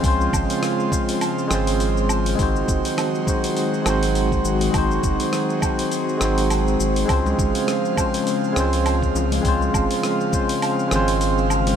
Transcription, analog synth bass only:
X:1
M:4/4
L:1/8
Q:"Swing 16ths" 1/4=102
K:Db
V:1 name="Analog synth bass" clef=bass
D,, A,,, z3 A,,,3 | A,,, G,,, z3 A,,,2 A,,, | A,,, G,,, z3 A,,,2 A,,, | D,, A,,, z3 D,,2 D,, |
D,, A,,, z3 A,,,3 |]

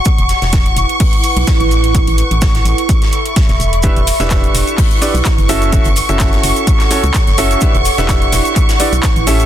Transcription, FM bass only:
X:1
M:4/4
L:1/16
Q:"Swing 16ths" 1/4=127
K:Edor
V:1 name="FM bass" clef=bass
z E,,, z E,,,3 E,,, z4 B,,, z A,,,3- | A,,, A,,, z A,,,3 A,,, z6 E,,, E,,,2- | E,,, E,,, z E,,,3 E,,, z4 B,,, z F,,,3- | F,,, F,,, z F,,,3 F,,, z4 C,, z F,,,3 |
z E,,, z E,,,3 E,,, z4 B,,, z A,,,3 |]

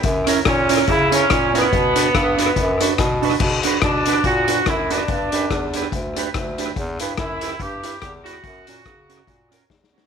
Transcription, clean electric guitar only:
X:1
M:4/4
L:1/8
Q:"Swing" 1/4=143
K:Bm
V:1 name="Clean electric guitar"
z [CE^A] z [CEA] z [CEA] z [CEA] | z [DFB] z [DFB] z [DFB] z [DFB] | z [DFB] z [DFB] z [DFB] z [DFB] | z [DGB] z [DGB] z [DGB] z [DGB] |
z [EGB] z [EGB] z [EGB] z [EGB] | z [CF^A] z [CFA] z [CFA] z [CFA] |]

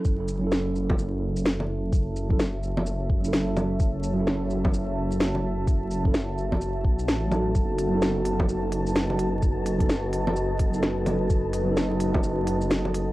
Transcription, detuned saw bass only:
X:1
M:4/4
L:1/8
Q:"Swing 16ths" 1/4=128
K:F#dor
V:1 name="Detuned saw bass" clef=bass
F,,,8 | F,,,8 | F,,,8 | F,,,4- F,,, B,,, A,,,2 |
F,,,8 | F,,,8 | F,,,8 |]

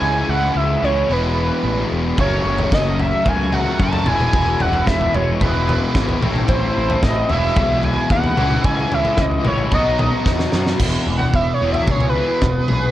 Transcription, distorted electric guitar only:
X:1
M:4/4
L:1/8
Q:1/4=111
K:E
V:1 name="Distorted electric guitar" clef=bass
[C,E,G,CE]3 [C,E,G,CE] [E,,B,,E,G,B,G]4 | [F,,C,F,A,CF]4 [F,,C,F,A,CF]3 [E,,B,,E,G,B,E]- | [E,,B,,E,G,B,E]3 [E,,B,,E,G,B,E]4 [A,,E,A,=CE]- | [A,,E,A,=CE]3 [E,,B,,E,G,B,E]4 [^C,E,G,^CE]- |
[C,E,G,CE]3 [C,E,G,CE] [B,,F,B,DF]4 | [E,,B,,E,] [E,,B,,] [E,,B,,] [E,,B,,E,] [E,,B,,] [E,,B,,E,] [E,,B,,] [E,,B,,] |]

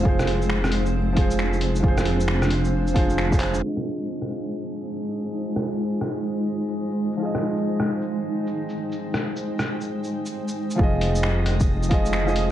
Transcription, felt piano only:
X:1
M:4/4
L:1/16
Q:"Swing 16ths" 1/4=134
K:Fdor
V:1 name="Felt piano"
[F,FAc]8- [F,FAc]2 [F,FAc]6 | [F,FAc]8- [F,FAc]2 [F,FAc]3 [F,FAc]3 | [F,FA]16- | [F,FA]16 |
[F,FAe]16- | [F,FAe]16 | [F,FAe]8- [F,FAe]2 [F,FAe]3 [F,FAe]3 |]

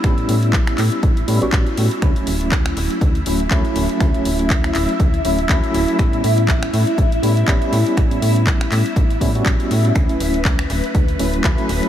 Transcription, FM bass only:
X:1
M:4/4
L:1/16
Q:"Swing 16ths" 1/4=121
K:D
V:1 name="FM bass" clef=bass
A,,, A,, A,,2 A,,,2 A,, z A,,,2 A,, A,,, A,,, z A,, z | D,, D,,, D,,,2 D,,2 D,,, z D,,2 D,,,2 D,, z D,,, z | D,, D,,, D,,,2 D,,2 D,,, z D,,2 D,,,2 D,, z D,,, z | A,,, A,, A,,2 A,,,2 A,, z A,,,2 A,,2 A,,, z A,, z |
A,,, A,, A,,2 A,,,2 A,, z A,,,2 A,,2 A,,, z A,,2 | D,, D,,, D,,,2 D,,2 D,,, z D,,2 D,,,2 D,, z D,,, z |]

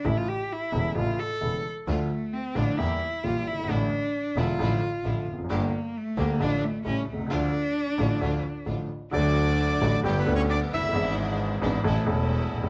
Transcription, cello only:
X:1
M:4/4
L:1/16
Q:1/4=132
K:Dm
V:1 name="Cello"
E F G2 E4 F2 A4 z2 | A,4 C2 D2 E4 F2 E2 | D6 F8 z2 | B,4 A,2 B,2 D2 A,2 ^C2 A,2 |
D12 z4 | [K:D] D8 (3G,2 B,2 C2 D2 E2- | E2 z12 z2 |]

